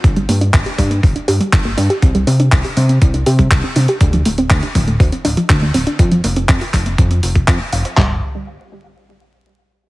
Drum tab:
HH |xxoxxxoxoxoxx-ox|xxoxxooxxxoxx-ox|xxoxxxoxoxoxx-ox|xxoxxooxxxoxx-ox|
CP |----x-------x---|----x-------x---|----x-------x---|----x-x-----x---|
FT |----------------|----------------|----------------|----------------|
BD |o---o-o-o---o---|o---o---o--oo---|o---o-o-o---o---|o---o-o-o--oo---|

HH |----------------|
CP |x---------------|
FT |o---------------|
BD |o---------------|